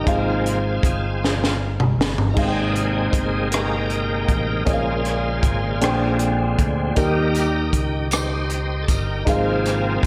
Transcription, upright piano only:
0.04 1.18 G#3 soft
0.04 2.32 D#4 medium
0.04 2.32 G#4 soft
0.04 2.33 C5 soft
0.08 2.34 F5 medium
2.34 3.48 G#3 soft
2.34 4.61 D#4 medium
2.34 4.62 G#4 soft
2.34 4.63 C5 soft
2.38 2.44 F5 soft
2.45 4.67 G5 medium
4.65 5.77 A#2 medium
4.65 5.81 C#4 soft
4.65 5.80 G#4 soft
4.65 5.82 A#4 soft
4.65 4.73 D#5 soft
4.73 5.85 F5 medium
5.81 6.93 A#2 medium
5.81 6.96 D4 medium
5.81 6.97 G#4 medium
5.81 6.97 C5 medium
5.81 6.97 G5 medium
6.95 8.08 D#3 medium
6.95 9.22 D#4 medium
6.95 9.23 G4 soft
6.95 9.23 A#4 soft
7.00 9.24 G5 medium
9.25 10.06 G#3 medium
9.25 10.06 D#4 medium
9.25 10.06 G#4 soft
9.25 9.34 A#4 soft
9.25 10.06 F5 medium
9.34 10.06 C5 soft

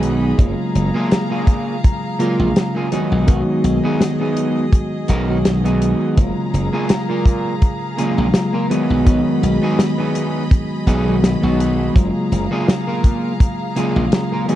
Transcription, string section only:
0.00 2.88 G#4 medium
0.00 0.36 D#5 medium
0.00 0.36 B5 medium
0.39 2.90 F5 medium
0.39 2.90 A#5 medium
2.92 6.14 G#4 medium
2.92 6.14 D#5 medium
6.17 8.68 G#4 medium
6.17 8.68 F5 medium
6.17 8.68 A#5 medium
8.70 14.55 G#4 medium
8.70 11.92 D#5 medium
8.70 11.93 B5 medium
11.96 14.46 F5 medium
11.96 14.46 A#5 medium
14.48 14.55 D#5 medium
14.48 14.55 B5 medium

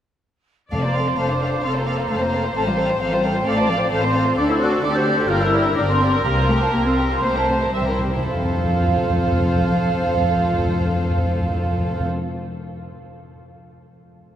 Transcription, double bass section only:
0.72 1.13 F1 soft
1.18 1.59 F1 soft
1.64 2.05 F1 soft
2.11 2.51 F1 soft
2.56 2.96 A1 medium
3.01 3.41 A1 medium
3.46 3.87 A1 medium
3.92 4.33 A1 medium
4.37 4.78 D2 medium
4.83 5.24 D2 medium
5.29 5.71 G1 medium
5.77 6.19 G1 medium
6.24 6.67 C2 medium
6.73 7.17 C2 medium
7.23 7.68 C2 medium
7.73 8.21 C2 soft
8.27 12.07 F2 medium

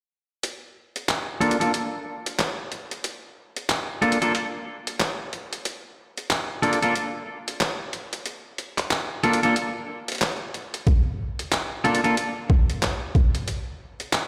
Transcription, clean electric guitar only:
1.41 1.56 A#3 medium
1.41 1.56 D4 medium
1.41 1.56 F4 medium
1.41 1.56 A4 medium
1.60 1.71 A#3 medium
1.60 1.71 D4 medium
1.60 1.71 F4 medium
1.60 1.71 A4 medium
4.02 4.17 A#3 medium
4.02 4.17 D4 medium
4.02 4.17 F4 medium
4.02 4.17 A4 medium
4.22 4.32 A#3 medium
4.22 4.32 D4 medium
4.22 4.32 F4 medium
4.22 4.32 A4 medium
6.62 6.78 A#3 medium
6.62 6.78 D4 medium
6.62 6.78 F4 medium
6.62 6.78 A4 medium
6.82 6.93 A#3 medium
6.82 6.93 D4 medium
6.82 6.93 F4 medium
6.82 6.93 A4 medium
9.24 9.39 A#3 medium
9.24 9.39 D4 medium
9.24 9.39 F4 medium
9.24 9.39 A4 loud
9.43 9.54 A#3 medium
9.43 9.54 D4 medium
9.43 9.54 F4 medium
9.43 9.54 A4 medium
11.84 12.00 A#3 medium
11.84 12.00 D4 medium
11.84 12.00 F4 medium
11.84 12.00 A4 medium
12.04 12.15 A#3 medium
12.04 12.15 D4 medium
12.04 12.15 F4 medium
12.04 12.14 A4 medium

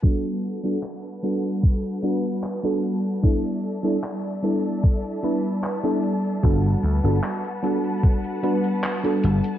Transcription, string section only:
0.03 3.20 G3 medium
0.03 3.20 B4 medium
0.03 3.20 F#5 medium
0.03 9.59 A5 medium
3.23 9.59 G3 medium
3.23 6.40 D5 medium
3.23 6.40 E5 medium
6.43 9.59 B4 medium
6.43 9.59 F#5 medium

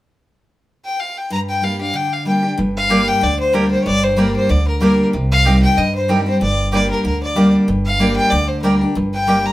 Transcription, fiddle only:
0.85 1.01 G5 medium
1.00 1.19 F5 medium
1.18 1.31 G5 medium
1.32 1.40 A#5 loud
1.49 1.66 G5 medium
1.64 1.81 F5 medium
1.82 1.97 F5 medium
1.96 2.15 G5 medium
2.13 2.27 F5 medium
2.27 2.50 G5 medium
2.76 3.10 F5 loud
3.08 3.25 G5 loud
3.24 3.39 D5 loud
3.40 3.55 C5 medium
3.54 3.71 A#4 medium
3.71 3.84 C5 medium
3.83 3.87 C#5 medium
3.83 4.05 D5 loud
4.04 4.20 C5 medium
4.18 4.35 A#4 medium
4.36 4.51 C5 medium
4.50 4.67 D5 medium
4.68 4.81 A#4 medium
4.82 5.05 A#4 medium
5.32 5.61 F5 loud
5.62 5.79 G5 loud
5.78 5.95 D#5 medium
5.95 6.12 C5 medium
6.10 6.27 A#4 medium
6.28 6.41 C5 medium
6.41 6.71 D5 medium
6.74 6.89 D5 medium
6.90 7.04 A#4 medium
7.05 7.21 A#4 medium
7.23 7.52 D5 medium
7.85 8.15 F5 loud
8.16 8.32 G5 loud
8.30 8.49 D5 loud
8.47 8.62 C5 medium
8.62 8.79 A#4 medium
9.13 9.47 G5 loud
9.46 9.53 A#5 loud

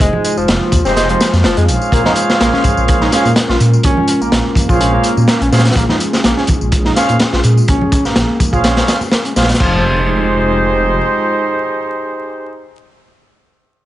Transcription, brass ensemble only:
0.85 1.30 D#4 medium
0.85 1.30 G4 medium
0.85 1.30 G#4 medium
0.85 1.30 C5 medium
1.57 3.10 G#4 medium
1.57 3.10 C5 medium
1.57 3.10 C#5 medium
1.57 3.10 F5 medium
3.12 3.30 G#4 loud
3.12 3.30 C5 medium
3.12 3.30 C#5 medium
3.12 3.30 F5 loud
4.69 5.14 G#4 medium
4.69 5.14 C5 medium
4.69 5.14 C#5 medium
4.69 5.14 F5 loud
5.52 5.64 G#4 medium
5.52 5.64 C5 medium
5.52 5.64 C#5 medium
5.52 5.64 F5 medium
6.96 7.14 G#4 loud
6.96 7.14 C5 medium
6.96 7.14 C#5 medium
6.96 7.14 F5 loud
8.53 8.98 G#4 medium
8.53 8.98 C5 medium
8.53 8.98 C#5 medium
8.53 8.98 F5 medium
9.36 9.48 G#4 medium
9.36 9.48 C5 medium
9.36 9.48 C#5 medium
9.36 9.48 F5 medium
9.60 12.69 D#4 medium
9.60 12.69 G4 medium
9.60 12.69 G#4 medium
9.60 12.69 C5 medium

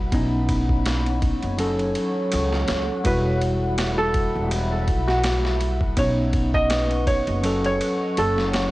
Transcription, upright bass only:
0.13 1.28 B1 medium
1.43 1.93 F#1 medium
2.33 2.65 C#2 loud
2.69 2.87 C#2 medium
3.05 4.31 E1 loud
4.35 4.85 E1 medium
4.88 5.95 B1 medium
5.97 7.13 B1 medium
7.27 7.77 F#1 medium
8.18 8.71 F#1 loud

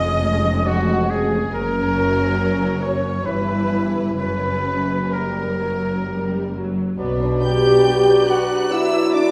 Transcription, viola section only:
0.00 1.50 G#3 medium
0.00 1.50 C#4 medium
1.55 3.23 F#3 medium
1.55 3.23 C#4 medium
3.26 4.16 E3 soft
3.26 4.18 E4 soft
4.18 5.14 F#3 soft
4.18 5.12 C#4 medium
5.13 5.57 G3 medium
5.61 6.07 F#3 soft
6.07 6.54 G3 medium
6.54 6.99 F#3 soft
7.44 8.27 G4 medium
8.30 8.73 F#4 medium
8.74 9.16 E4 medium
9.16 9.31 D4 medium

